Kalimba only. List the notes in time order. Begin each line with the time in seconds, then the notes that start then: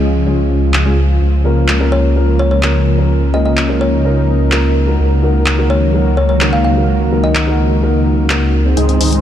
1.92 C#5
2.39 C#5
2.51 C#5
3.34 D#5
3.46 D#5
3.81 C#5
5.70 C#5
6.17 C#5
6.29 C#5
6.53 F5
6.64 F5
7.24 D#5